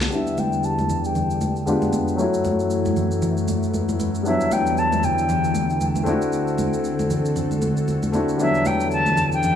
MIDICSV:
0, 0, Header, 1, 5, 480
1, 0, Start_track
1, 0, Key_signature, 1, "minor"
1, 0, Tempo, 517241
1, 110, Time_signature, 4, 2, 24, 8
1, 8867, End_track
2, 0, Start_track
2, 0, Title_t, "Flute"
2, 0, Program_c, 0, 73
2, 125, Note_on_c, 0, 76, 91
2, 365, Note_on_c, 0, 79, 91
2, 379, Note_off_c, 0, 76, 0
2, 604, Note_on_c, 0, 81, 100
2, 618, Note_off_c, 0, 79, 0
2, 983, Note_on_c, 0, 79, 86
2, 997, Note_off_c, 0, 81, 0
2, 1456, Note_off_c, 0, 79, 0
2, 3962, Note_on_c, 0, 76, 100
2, 4202, Note_on_c, 0, 79, 95
2, 4216, Note_off_c, 0, 76, 0
2, 4442, Note_on_c, 0, 81, 101
2, 4456, Note_off_c, 0, 79, 0
2, 4683, Note_on_c, 0, 79, 93
2, 4697, Note_off_c, 0, 81, 0
2, 5636, Note_off_c, 0, 79, 0
2, 7805, Note_on_c, 0, 76, 98
2, 8044, Note_on_c, 0, 79, 88
2, 8057, Note_off_c, 0, 76, 0
2, 8277, Note_off_c, 0, 79, 0
2, 8283, Note_on_c, 0, 81, 99
2, 8629, Note_off_c, 0, 81, 0
2, 8662, Note_on_c, 0, 79, 90
2, 8867, Note_off_c, 0, 79, 0
2, 8867, End_track
3, 0, Start_track
3, 0, Title_t, "Grand piano"
3, 0, Program_c, 1, 0
3, 82, Note_on_c, 1, 55, 64
3, 96, Note_on_c, 1, 59, 58
3, 111, Note_on_c, 1, 62, 57
3, 126, Note_on_c, 1, 64, 59
3, 141, Note_on_c, 1, 67, 69
3, 281, Control_c, 1, 64, 127
3, 1507, Note_off_c, 1, 55, 0
3, 1514, Note_off_c, 1, 59, 0
3, 1522, Note_off_c, 1, 62, 0
3, 1529, Note_off_c, 1, 64, 0
3, 1537, Note_off_c, 1, 67, 0
3, 1537, Note_on_c, 1, 56, 74
3, 1544, Note_on_c, 1, 59, 69
3, 1551, Note_on_c, 1, 62, 69
3, 1558, Note_on_c, 1, 65, 67
3, 1562, Control_c, 1, 64, 0
3, 1566, Note_on_c, 1, 67, 83
3, 1727, Control_c, 1, 64, 127
3, 2003, Note_on_c, 1, 54, 75
3, 2017, Note_on_c, 1, 57, 70
3, 2023, Note_off_c, 1, 56, 0
3, 2027, Note_off_c, 1, 59, 0
3, 2030, Note_off_c, 1, 62, 0
3, 2032, Note_on_c, 1, 61, 67
3, 2034, Note_off_c, 1, 65, 0
3, 2038, Note_off_c, 1, 67, 0
3, 2043, Control_c, 1, 64, 0
3, 2048, Note_on_c, 1, 64, 68
3, 2062, Note_on_c, 1, 66, 80
3, 2177, Control_c, 1, 64, 127
3, 3899, Note_off_c, 1, 54, 0
3, 3906, Note_off_c, 1, 57, 0
3, 3914, Note_off_c, 1, 61, 0
3, 3921, Note_off_c, 1, 64, 0
3, 3921, Note_on_c, 1, 55, 64
3, 3929, Note_off_c, 1, 66, 0
3, 3936, Note_on_c, 1, 59, 58
3, 3950, Note_on_c, 1, 62, 61
3, 3962, Control_c, 1, 64, 0
3, 3966, Note_on_c, 1, 64, 61
3, 3980, Note_on_c, 1, 54, 71
3, 4134, Control_c, 1, 64, 127
3, 5581, Note_off_c, 1, 55, 0
3, 5589, Note_off_c, 1, 59, 0
3, 5596, Note_off_c, 1, 62, 0
3, 5600, Note_on_c, 1, 57, 69
3, 5604, Note_off_c, 1, 64, 0
3, 5612, Note_off_c, 1, 54, 0
3, 5615, Note_on_c, 1, 60, 66
3, 5630, Note_on_c, 1, 62, 66
3, 5643, Control_c, 1, 64, 0
3, 5644, Note_on_c, 1, 64, 69
3, 5660, Note_on_c, 1, 66, 78
3, 5779, Control_c, 1, 64, 127
3, 7498, Note_off_c, 1, 57, 0
3, 7505, Note_off_c, 1, 60, 0
3, 7513, Note_off_c, 1, 62, 0
3, 7520, Note_off_c, 1, 64, 0
3, 7527, Note_off_c, 1, 66, 0
3, 7536, Note_on_c, 1, 57, 54
3, 7544, Note_on_c, 1, 60, 50
3, 7551, Note_on_c, 1, 62, 50
3, 7559, Note_on_c, 1, 64, 51
3, 7566, Note_on_c, 1, 66, 62
3, 7762, Note_on_c, 1, 55, 62
3, 7777, Note_on_c, 1, 59, 58
3, 7778, Note_off_c, 1, 62, 0
3, 7783, Note_off_c, 1, 57, 0
3, 7787, Note_off_c, 1, 60, 0
3, 7792, Note_on_c, 1, 62, 59
3, 7793, Note_off_c, 1, 64, 0
3, 7798, Note_off_c, 1, 66, 0
3, 7801, Control_c, 1, 64, 0
3, 7806, Note_on_c, 1, 64, 58
3, 7821, Note_on_c, 1, 54, 69
3, 7992, Control_c, 1, 64, 127
3, 8867, Note_off_c, 1, 54, 0
3, 8867, Note_off_c, 1, 55, 0
3, 8867, Note_off_c, 1, 59, 0
3, 8867, Note_off_c, 1, 62, 0
3, 8867, Note_off_c, 1, 64, 0
3, 8867, End_track
4, 0, Start_track
4, 0, Title_t, "String machine"
4, 0, Program_c, 2, 50
4, 110, Note_on_c, 2, 40, 83
4, 110, Note_on_c, 2, 50, 75
4, 110, Note_on_c, 2, 55, 75
4, 110, Note_on_c, 2, 67, 94
4, 1535, Note_off_c, 2, 67, 0
4, 1536, Note_off_c, 2, 40, 0
4, 1536, Note_off_c, 2, 55, 0
4, 1549, Note_on_c, 2, 41, 72
4, 1549, Note_on_c, 2, 56, 81
4, 1549, Note_on_c, 2, 59, 68
4, 2011, Note_off_c, 2, 50, 0
4, 2025, Note_off_c, 2, 41, 0
4, 2025, Note_off_c, 2, 56, 0
4, 2025, Note_off_c, 2, 59, 0
4, 2029, Note_on_c, 2, 42, 86
4, 2029, Note_on_c, 2, 57, 75
4, 2030, Note_on_c, 2, 52, 80
4, 2030, Note_on_c, 2, 64, 92
4, 3930, Note_off_c, 2, 42, 0
4, 3930, Note_off_c, 2, 57, 0
4, 3931, Note_off_c, 2, 52, 0
4, 3948, Note_on_c, 2, 40, 83
4, 3948, Note_on_c, 2, 50, 77
4, 3949, Note_on_c, 2, 52, 79
4, 5594, Note_off_c, 2, 64, 0
4, 5612, Note_off_c, 2, 40, 0
4, 5613, Note_off_c, 2, 52, 0
4, 5629, Note_on_c, 2, 38, 77
4, 5629, Note_on_c, 2, 60, 73
4, 5630, Note_on_c, 2, 69, 84
4, 7768, Note_off_c, 2, 38, 0
4, 7768, Note_off_c, 2, 60, 0
4, 7789, Note_on_c, 2, 40, 82
4, 7790, Note_on_c, 2, 52, 78
4, 8867, Note_off_c, 2, 40, 0
4, 8867, Note_off_c, 2, 50, 0
4, 8867, Note_off_c, 2, 52, 0
4, 8867, Note_off_c, 2, 69, 0
4, 8867, End_track
5, 0, Start_track
5, 0, Title_t, "Drums"
5, 9, Note_on_c, 9, 82, 54
5, 11, Note_on_c, 9, 38, 70
5, 102, Note_off_c, 9, 82, 0
5, 104, Note_off_c, 9, 38, 0
5, 108, Note_on_c, 9, 82, 68
5, 201, Note_off_c, 9, 82, 0
5, 249, Note_on_c, 9, 82, 54
5, 341, Note_off_c, 9, 82, 0
5, 349, Note_on_c, 9, 82, 84
5, 350, Note_on_c, 9, 63, 71
5, 442, Note_off_c, 9, 82, 0
5, 443, Note_off_c, 9, 63, 0
5, 488, Note_on_c, 9, 82, 52
5, 581, Note_off_c, 9, 82, 0
5, 588, Note_on_c, 9, 82, 67
5, 681, Note_off_c, 9, 82, 0
5, 729, Note_on_c, 9, 82, 49
5, 730, Note_on_c, 9, 63, 67
5, 821, Note_off_c, 9, 82, 0
5, 822, Note_off_c, 9, 63, 0
5, 830, Note_on_c, 9, 82, 78
5, 831, Note_on_c, 9, 64, 61
5, 922, Note_off_c, 9, 82, 0
5, 924, Note_off_c, 9, 64, 0
5, 968, Note_on_c, 9, 82, 51
5, 1061, Note_off_c, 9, 82, 0
5, 1070, Note_on_c, 9, 64, 72
5, 1070, Note_on_c, 9, 82, 79
5, 1163, Note_off_c, 9, 64, 0
5, 1163, Note_off_c, 9, 82, 0
5, 1210, Note_on_c, 9, 82, 47
5, 1303, Note_off_c, 9, 82, 0
5, 1308, Note_on_c, 9, 82, 84
5, 1310, Note_on_c, 9, 63, 69
5, 1401, Note_off_c, 9, 82, 0
5, 1403, Note_off_c, 9, 63, 0
5, 1448, Note_on_c, 9, 82, 50
5, 1541, Note_off_c, 9, 82, 0
5, 1550, Note_on_c, 9, 63, 58
5, 1551, Note_on_c, 9, 82, 71
5, 1643, Note_off_c, 9, 63, 0
5, 1644, Note_off_c, 9, 82, 0
5, 1688, Note_on_c, 9, 63, 67
5, 1688, Note_on_c, 9, 82, 54
5, 1781, Note_off_c, 9, 63, 0
5, 1781, Note_off_c, 9, 82, 0
5, 1787, Note_on_c, 9, 63, 72
5, 1790, Note_on_c, 9, 82, 80
5, 1880, Note_off_c, 9, 63, 0
5, 1883, Note_off_c, 9, 82, 0
5, 1930, Note_on_c, 9, 82, 49
5, 2022, Note_off_c, 9, 82, 0
5, 2030, Note_on_c, 9, 82, 65
5, 2123, Note_off_c, 9, 82, 0
5, 2169, Note_on_c, 9, 82, 56
5, 2262, Note_off_c, 9, 82, 0
5, 2269, Note_on_c, 9, 63, 70
5, 2270, Note_on_c, 9, 82, 84
5, 2362, Note_off_c, 9, 63, 0
5, 2362, Note_off_c, 9, 82, 0
5, 2408, Note_on_c, 9, 82, 51
5, 2501, Note_off_c, 9, 82, 0
5, 2508, Note_on_c, 9, 82, 67
5, 2601, Note_off_c, 9, 82, 0
5, 2649, Note_on_c, 9, 82, 52
5, 2650, Note_on_c, 9, 63, 66
5, 2741, Note_off_c, 9, 82, 0
5, 2743, Note_off_c, 9, 63, 0
5, 2750, Note_on_c, 9, 82, 79
5, 2751, Note_on_c, 9, 64, 64
5, 2843, Note_off_c, 9, 82, 0
5, 2844, Note_off_c, 9, 64, 0
5, 2888, Note_on_c, 9, 82, 52
5, 2981, Note_off_c, 9, 82, 0
5, 2989, Note_on_c, 9, 64, 70
5, 2989, Note_on_c, 9, 82, 80
5, 3082, Note_off_c, 9, 64, 0
5, 3082, Note_off_c, 9, 82, 0
5, 3129, Note_on_c, 9, 82, 48
5, 3222, Note_off_c, 9, 82, 0
5, 3228, Note_on_c, 9, 82, 88
5, 3230, Note_on_c, 9, 63, 64
5, 3321, Note_off_c, 9, 82, 0
5, 3322, Note_off_c, 9, 63, 0
5, 3368, Note_on_c, 9, 82, 49
5, 3461, Note_off_c, 9, 82, 0
5, 3470, Note_on_c, 9, 63, 55
5, 3470, Note_on_c, 9, 82, 70
5, 3563, Note_off_c, 9, 63, 0
5, 3563, Note_off_c, 9, 82, 0
5, 3608, Note_on_c, 9, 82, 55
5, 3609, Note_on_c, 9, 63, 67
5, 3700, Note_off_c, 9, 82, 0
5, 3702, Note_off_c, 9, 63, 0
5, 3709, Note_on_c, 9, 63, 72
5, 3710, Note_on_c, 9, 82, 77
5, 3801, Note_off_c, 9, 63, 0
5, 3803, Note_off_c, 9, 82, 0
5, 3849, Note_on_c, 9, 82, 50
5, 3941, Note_off_c, 9, 82, 0
5, 3949, Note_on_c, 9, 82, 69
5, 4042, Note_off_c, 9, 82, 0
5, 4088, Note_on_c, 9, 82, 56
5, 4181, Note_off_c, 9, 82, 0
5, 4189, Note_on_c, 9, 63, 72
5, 4189, Note_on_c, 9, 82, 87
5, 4281, Note_off_c, 9, 82, 0
5, 4282, Note_off_c, 9, 63, 0
5, 4328, Note_on_c, 9, 82, 52
5, 4421, Note_off_c, 9, 82, 0
5, 4429, Note_on_c, 9, 82, 64
5, 4522, Note_off_c, 9, 82, 0
5, 4568, Note_on_c, 9, 63, 66
5, 4569, Note_on_c, 9, 82, 49
5, 4661, Note_off_c, 9, 63, 0
5, 4662, Note_off_c, 9, 82, 0
5, 4670, Note_on_c, 9, 64, 66
5, 4671, Note_on_c, 9, 82, 77
5, 4763, Note_off_c, 9, 64, 0
5, 4763, Note_off_c, 9, 82, 0
5, 4809, Note_on_c, 9, 82, 49
5, 4901, Note_off_c, 9, 82, 0
5, 4909, Note_on_c, 9, 64, 70
5, 4909, Note_on_c, 9, 82, 78
5, 5002, Note_off_c, 9, 64, 0
5, 5002, Note_off_c, 9, 82, 0
5, 5050, Note_on_c, 9, 82, 49
5, 5143, Note_off_c, 9, 82, 0
5, 5148, Note_on_c, 9, 82, 85
5, 5149, Note_on_c, 9, 63, 68
5, 5241, Note_off_c, 9, 63, 0
5, 5241, Note_off_c, 9, 82, 0
5, 5288, Note_on_c, 9, 82, 50
5, 5381, Note_off_c, 9, 82, 0
5, 5389, Note_on_c, 9, 82, 72
5, 5390, Note_on_c, 9, 63, 55
5, 5482, Note_off_c, 9, 82, 0
5, 5483, Note_off_c, 9, 63, 0
5, 5527, Note_on_c, 9, 82, 56
5, 5528, Note_on_c, 9, 63, 66
5, 5620, Note_off_c, 9, 82, 0
5, 5621, Note_off_c, 9, 63, 0
5, 5627, Note_on_c, 9, 63, 72
5, 5629, Note_on_c, 9, 82, 81
5, 5720, Note_off_c, 9, 63, 0
5, 5721, Note_off_c, 9, 82, 0
5, 5769, Note_on_c, 9, 82, 50
5, 5862, Note_off_c, 9, 82, 0
5, 5869, Note_on_c, 9, 82, 68
5, 5962, Note_off_c, 9, 82, 0
5, 6009, Note_on_c, 9, 82, 52
5, 6102, Note_off_c, 9, 82, 0
5, 6108, Note_on_c, 9, 63, 70
5, 6109, Note_on_c, 9, 82, 87
5, 6201, Note_off_c, 9, 63, 0
5, 6202, Note_off_c, 9, 82, 0
5, 6249, Note_on_c, 9, 82, 52
5, 6342, Note_off_c, 9, 82, 0
5, 6350, Note_on_c, 9, 82, 65
5, 6443, Note_off_c, 9, 82, 0
5, 6489, Note_on_c, 9, 63, 65
5, 6490, Note_on_c, 9, 82, 49
5, 6582, Note_off_c, 9, 63, 0
5, 6583, Note_off_c, 9, 82, 0
5, 6591, Note_on_c, 9, 64, 64
5, 6592, Note_on_c, 9, 82, 81
5, 6684, Note_off_c, 9, 64, 0
5, 6685, Note_off_c, 9, 82, 0
5, 6731, Note_on_c, 9, 82, 49
5, 6823, Note_off_c, 9, 82, 0
5, 6829, Note_on_c, 9, 64, 69
5, 6831, Note_on_c, 9, 82, 81
5, 6922, Note_off_c, 9, 64, 0
5, 6924, Note_off_c, 9, 82, 0
5, 6969, Note_on_c, 9, 63, 48
5, 6972, Note_on_c, 9, 82, 46
5, 7062, Note_off_c, 9, 63, 0
5, 7064, Note_off_c, 9, 82, 0
5, 7069, Note_on_c, 9, 63, 66
5, 7070, Note_on_c, 9, 82, 88
5, 7162, Note_off_c, 9, 63, 0
5, 7163, Note_off_c, 9, 82, 0
5, 7210, Note_on_c, 9, 82, 48
5, 7303, Note_off_c, 9, 82, 0
5, 7311, Note_on_c, 9, 63, 58
5, 7311, Note_on_c, 9, 82, 70
5, 7404, Note_off_c, 9, 63, 0
5, 7404, Note_off_c, 9, 82, 0
5, 7449, Note_on_c, 9, 63, 67
5, 7449, Note_on_c, 9, 82, 53
5, 7542, Note_off_c, 9, 63, 0
5, 7542, Note_off_c, 9, 82, 0
5, 7549, Note_on_c, 9, 63, 74
5, 7551, Note_on_c, 9, 82, 76
5, 7641, Note_off_c, 9, 63, 0
5, 7643, Note_off_c, 9, 82, 0
5, 7690, Note_on_c, 9, 82, 49
5, 7783, Note_off_c, 9, 82, 0
5, 7790, Note_on_c, 9, 82, 68
5, 7883, Note_off_c, 9, 82, 0
5, 7930, Note_on_c, 9, 82, 54
5, 8023, Note_off_c, 9, 82, 0
5, 8030, Note_on_c, 9, 82, 87
5, 8031, Note_on_c, 9, 63, 68
5, 8123, Note_off_c, 9, 82, 0
5, 8124, Note_off_c, 9, 63, 0
5, 8169, Note_on_c, 9, 82, 53
5, 8262, Note_off_c, 9, 82, 0
5, 8270, Note_on_c, 9, 82, 63
5, 8362, Note_off_c, 9, 82, 0
5, 8410, Note_on_c, 9, 63, 69
5, 8410, Note_on_c, 9, 82, 49
5, 8502, Note_off_c, 9, 82, 0
5, 8503, Note_off_c, 9, 63, 0
5, 8511, Note_on_c, 9, 82, 80
5, 8512, Note_on_c, 9, 64, 63
5, 8604, Note_off_c, 9, 82, 0
5, 8605, Note_off_c, 9, 64, 0
5, 8649, Note_on_c, 9, 82, 49
5, 8742, Note_off_c, 9, 82, 0
5, 8750, Note_on_c, 9, 64, 69
5, 8750, Note_on_c, 9, 82, 80
5, 8843, Note_off_c, 9, 64, 0
5, 8843, Note_off_c, 9, 82, 0
5, 8867, End_track
0, 0, End_of_file